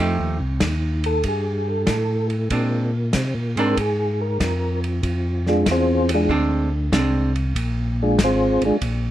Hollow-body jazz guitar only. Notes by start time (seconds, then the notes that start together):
0.00 F3 A3 D#4 G4
2.51 G#3 C4 D4
3.58 G#3 C4 D4
6.29 G#3 C4 D4
6.93 G#3 C4 D4